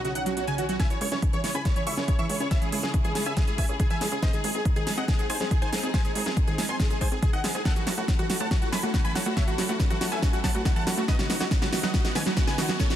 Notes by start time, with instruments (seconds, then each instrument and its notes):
Already playing: analog synth bass B1, string section B3 C#4 D#4, swell
0.05 synth pluck C#3, grand piano F#4, supersaw synth F#4, closed hi-hat
0.15 synth pluck D#3, grand piano F#5, supersaw synth F#5, closed hi-hat
0.26 synth pluck F#3, grand piano F#4, supersaw synth F#4, closed hi-hat
0.37 synth pluck B2, grand piano F#4, supersaw synth F#4, closed hi-hat
0.47 synth pluck C#3, grand piano G#5, supersaw synth G#5, closed hi-hat
0.58 synth pluck D#3, grand piano F#4, supersaw synth F#4, closed hi-hat
0.69 synth pluck F#3, grand piano F#4, supersaw synth F#4, closed hi-hat
0.79 synth pluck C#3, string section C#3 C#4 E4 G#4, supersaw synth E5 G#5, grand piano G#5, kick, snare, closed hi-hat
0.90 synth pluck E3, grand piano C#5, supersaw synth C#5, closed hi-hat
1.01 analog synth bass C#2, synth pluck G#3, grand piano C#5, supersaw synth C#5, open hi-hat
1.12 analog synth bass C#2, synth pluck C#4, grand piano C#5, supersaw synth C#5, snare, closed hi-hat
1.22 synth pluck C#3, kick, closed hi-hat
1.33 analog synth bass C#2, synth pluck E3, grand piano C#5, supersaw synth C#5, closed hi-hat
1.44 synth pluck G#3, grand piano C#5, supersaw synth C#5, snare, open hi-hat
1.55 analog synth bass C#2, synth pluck C#4, supersaw synth G#5 B5, grand piano B5, closed hi-hat
1.65 synth pluck C#3, grand piano C#5, supersaw synth C#5, kick, snare, closed hi-hat
1.76 synth pluck E3, grand piano C#5, supersaw synth C#5, closed hi-hat
1.87 analog synth bass G#1, synth pluck G#3, supersaw synth E5 C#6, grand piano C#6, open hi-hat
1.97 analog synth bass C#2, synth pluck C#4, grand piano C#5, supersaw synth C#5, snare, closed hi-hat
2.08 synth pluck C#3, grand piano C#5, supersaw synth C#5, kick, closed hi-hat
2.19 synth pluck E3, supersaw synth E5 C#6, grand piano C#6, closed hi-hat
2.29 analog synth bass C#2, synth pluck G#3, grand piano C#5, supersaw synth C#5, open hi-hat
2.40 analog synth bass C#2, synth pluck C#4, grand piano C#5, supersaw synth C#5, closed hi-hat
2.51 synth pluck C#3, supersaw synth C#5 E5, grand piano E5, kick, snare, closed hi-hat
2.62 synth pluck E3, grand piano G#4, supersaw synth G#4, closed hi-hat
2.72 analog synth bass C#2, synth pluck G#3, grand piano G#4, supersaw synth G#4, open hi-hat
2.83 analog synth bass C#2, synth pluck C#4, grand piano G#4, supersaw synth G#4, snare, closed hi-hat
2.94 synth pluck C#3, kick, closed hi-hat
3.05 analog synth bass C#2, synth pluck E3, grand piano G#4, supersaw synth G#4, closed hi-hat
3.15 synth pluck G#3, grand piano G#4, supersaw synth G#4, snare, open hi-hat
3.26 analog synth bass C#2, synth pluck C#4, supersaw synth E5 G#5, grand piano G#5, closed hi-hat
3.37 synth pluck C#3, grand piano G#4, supersaw synth G#4, kick, snare, closed hi-hat
3.47 synth pluck E3, grand piano G#4, supersaw synth G#4, closed hi-hat
3.58 analog synth bass G#1, synth pluck G#3, supersaw synth E5 G#5, grand piano G#5, kick, open hi-hat
3.69 analog synth bass C#2, synth pluck C#4, grand piano G#4, supersaw synth G#4, closed hi-hat
3.80 synth pluck C#3, supersaw synth G#4, grand piano G#4, kick, closed hi-hat
3.90 synth pluck E3, supersaw synth E5 G#5, grand piano G#5, closed hi-hat
4.01 analog synth bass C#2, synth pluck G#3, grand piano G#4, supersaw synth G#4, snare, open hi-hat
4.12 analog synth bass C#2, synth pluck C#4, grand piano G#4, supersaw synth G#4, closed hi-hat
4.22 synth pluck C3, string section C4 D#4, supersaw synth C5 D#5, grand piano D#5, kick, snare, closed hi-hat
4.33 synth pluck D#3, grand piano G#4, supersaw synth G#4, closed hi-hat
4.44 analog synth bass G#1, synth pluck G#3, grand piano G#4, supersaw synth G#4, open hi-hat
4.55 analog synth bass G#1, synth pluck C4, supersaw synth G#4, grand piano G#4, closed hi-hat
4.65 synth pluck C3, kick, closed hi-hat
4.76 analog synth bass G#1, synth pluck D#3, grand piano G#4, supersaw synth G#4, closed hi-hat
4.87 synth pluck G#3, grand piano G#4, supersaw synth G#4, snare, open hi-hat
4.97 analog synth bass G#1, synth pluck C4, supersaw synth D#5 F#5, grand piano F#5, closed hi-hat
5.08 synth pluck C3, grand piano G#4, supersaw synth G#4, kick, snare, closed hi-hat
5.19 synth pluck D#3, supersaw synth G#4, grand piano G#4, closed hi-hat
5.30 analog synth bass G#2, synth pluck G#3, supersaw synth C5 G#5, grand piano G#5, open hi-hat
5.40 analog synth bass G#1, synth pluck C4, supersaw synth G#4, grand piano G#4, snare, closed hi-hat
5.51 synth pluck C3, supersaw synth G#4, grand piano G#4, kick, closed hi-hat
5.62 synth pluck D#3, supersaw synth C5 G#5, grand piano G#5, closed hi-hat
5.72 analog synth bass G#1, synth pluck G#3, supersaw synth G#4, grand piano G#4, snare, open hi-hat
5.83 analog synth bass G#1, synth pluck C4, supersaw synth G#4, grand piano G#4, closed hi-hat
5.94 synth pluck C3, supersaw synth C5 G#5, grand piano G#5, kick, snare, closed hi-hat
6.05 synth pluck D#3, supersaw synth G#4, grand piano G#4, closed hi-hat
6.15 analog synth bass G#1, synth pluck G#3, supersaw synth G#4, grand piano G#4, open hi-hat
6.26 analog synth bass G#1, synth pluck C4, supersaw synth G#4, grand piano G#4, snare, closed hi-hat
6.37 synth pluck C3, kick, closed hi-hat
6.47 analog synth bass G#1, synth pluck D#3, supersaw synth G#4, grand piano G#4, closed hi-hat
6.58 synth pluck G#3, supersaw synth G#4, grand piano G#4, snare, open hi-hat
6.69 analog synth bass G#1, synth pluck C4, supersaw synth G#5 C6, grand piano C6, closed hi-hat
6.80 synth pluck C3, supersaw synth G#4, grand piano G#4, kick, snare, closed hi-hat
6.90 synth pluck D#3, supersaw synth G#4, grand piano G#4, closed hi-hat
7.01 analog synth bass G#2, synth pluck G#3, supersaw synth C5 G#5, grand piano G#5, kick, open hi-hat
7.12 analog synth bass G#1, synth pluck C4, grand piano G#4, supersaw synth G#4, closed hi-hat
7.22 synth pluck C3, grand piano G#4, supersaw synth G#4, kick, closed hi-hat
7.33 synth pluck D#3, supersaw synth D#5 F#5, grand piano F#5, closed hi-hat
7.44 analog synth bass G#1, synth pluck G#3, grand piano G#4, supersaw synth G#4, snare, open hi-hat
7.55 analog synth bass G#1, synth pluck C4, grand piano G#4, supersaw synth G#4, closed hi-hat
7.65 synth pluck C#3, string section F#3 C#4 E4 A4, supersaw synth A4 F#5, grand piano F#5, kick, snare, closed hi-hat, riser
7.76 synth pluck E3, grand piano F#4, supersaw synth F#4, closed hi-hat
7.87 analog synth bass F#1, synth pluck F#3, grand piano F#4, supersaw synth F#4, snare, open hi-hat
7.97 analog synth bass F#1, synth pluck A3, grand piano F#4, supersaw synth F#4, closed hi-hat
8.08 synth pluck C#3, kick, snare, closed hi-hat
8.19 analog synth bass F#1, synth pluck E3, grand piano F#4, supersaw synth F#4, closed hi-hat
8.29 synth pluck F#3, grand piano F#4, supersaw synth F#4, snare, open hi-hat
8.40 analog synth bass F#1, synth pluck A3, supersaw synth F#5 A5, grand piano A5, closed hi-hat
8.51 synth pluck C#3, grand piano F#4, supersaw synth F#4, kick, snare, closed hi-hat
8.62 synth pluck E3, grand piano F#4, supersaw synth F#4, closed hi-hat
8.72 analog synth bass F#2, synth pluck F#3, supersaw synth G#5 B5, grand piano B5, snare, open hi-hat
8.83 analog synth bass F#1, synth pluck A3, grand piano F#4, supersaw synth F#4, closed hi-hat
8.94 synth pluck C#3, grand piano F#4, supersaw synth F#4, kick, snare, closed hi-hat
9.04 synth pluck E3, supersaw synth G#5 B5, grand piano B5, closed hi-hat
9.15 analog synth bass F#1, synth pluck F#3, grand piano F#4, supersaw synth F#4, snare, open hi-hat
9.26 analog synth bass F#1, synth pluck A3, grand piano F#4, supersaw synth F#4, closed hi-hat
9.37 synth pluck C#3, supersaw synth C#5 E5, grand piano E5, kick, snare, closed hi-hat
9.47 synth pluck E3, grand piano F#4, supersaw synth F#4, closed hi-hat
9.58 analog synth bass F#1, synth pluck F#3, grand piano F#4, supersaw synth F#4, snare, open hi-hat
9.69 analog synth bass F#1, synth pluck A3, supersaw synth F#4, grand piano F#4, closed hi-hat
9.80 synth pluck C#3, kick, snare, closed hi-hat
9.90 analog synth bass F#1, synth pluck E3, grand piano F#4, supersaw synth F#4, closed hi-hat
10.01 synth pluck F#3, grand piano F#4, supersaw synth F#4, snare, open hi-hat
10.12 analog synth bass F#1, synth pluck A3, supersaw synth E5 G#5, grand piano G#5, closed hi-hat
10.22 synth pluck C#3, grand piano F#4, supersaw synth F#4, kick, snare, closed hi-hat
10.33 synth pluck E3, supersaw synth F#4, grand piano F#4, closed hi-hat
10.44 analog synth bass F#2, synth pluck F#3, supersaw synth F#5 A5, grand piano A5, kick, snare, open hi-hat
10.55 analog synth bass F#1, synth pluck A3, supersaw synth F#4, grand piano F#4, closed hi-hat
10.65 synth pluck C#3, grand piano F#4, supersaw synth F#4, kick, snare, closed hi-hat
10.76 synth pluck E3, supersaw synth F#5 A5, grand piano A5, closed hi-hat
10.87 analog synth bass F#1, synth pluck F#3, grand piano F#4, supersaw synth F#4, snare, open hi-hat
10.98 analog synth bass F#1, synth pluck A3, grand piano F#4, supersaw synth F#4, closed hi-hat
11.08 synth pluck B2, string section B3 D#4, supersaw synth B4 D#5, grand piano D#5, kick, snare, closed hi-hat
11.19 synth pluck C#3, grand piano F#4, supersaw synth F#4, snare, closed hi-hat
11.30 analog synth bass B1, synth pluck D#3, grand piano F#4, supersaw synth F#4, snare, open hi-hat
11.40 analog synth bass B1, synth pluck F#3, grand piano F#4, supersaw synth F#4, snare, closed hi-hat
11.51 synth pluck B2, kick, snare, closed hi-hat
11.62 analog synth bass B1, synth pluck C#3, grand piano F#4, supersaw synth F#4, snare, closed hi-hat
11.73 synth pluck D#3, grand piano F#4, supersaw synth F#4, snare, open hi-hat
11.83 analog synth bass B1, synth pluck F#3, supersaw synth D#5 F#5, grand piano F#5, snare
11.94 synth pluck B2, supersaw synth F#4, grand piano F#4, kick, snare, closed hi-hat
12.05 synth pluck C#3, supersaw synth F#4, grand piano F#4, snare, closed hi-hat
12.15 analog synth bass F#1, synth pluck D#3, supersaw synth B4 G#5, grand piano G#5, snare, open hi-hat
12.26 analog synth bass B1, synth pluck F#3, supersaw synth F#4, grand piano F#4, snare, closed hi-hat
12.37 synth pluck B2, supersaw synth F#4, grand piano F#4, kick, snare, closed hi-hat
12.47 synth pluck C#3, supersaw synth B4 G#5, grand piano G#5, snare, closed hi-hat
12.58 analog synth bass B1, synth pluck D#3, grand piano F#4, supersaw synth F#4, snare, open hi-hat
12.69 analog synth bass B1, synth pluck F#3, grand piano F#4, supersaw synth F#4, snare
12.80 synth pluck B2, supersaw synth A4 C#5, grand piano C#5, kick, snare, closed hi-hat
12.90 synth pluck C#3, grand piano F#4, supersaw synth F#4, snare, closed hi-hat